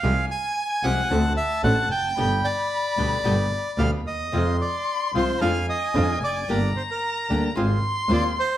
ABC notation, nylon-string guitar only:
X:1
M:4/4
L:1/8
Q:1/4=112
K:Gphr
V:1 name="Nylon-string guitar" clef=bass
[C,F,A,CG] z2 [C,F,A,CG] [D,=A,C^F] z [D,A,CF] z | [=B,,D,G,=B,G] z2 [B,,D,G,B,G] [B,,D,G,B,G] z [B,,D,G,B,G] z | [C,F,A,CF] z2 [C,F,A,CF] [F,A,DF] z [F,A,DF] z | [D,G,B,DG] z2 [D,G,B,DG] [A,CF] z [A,CF] z |]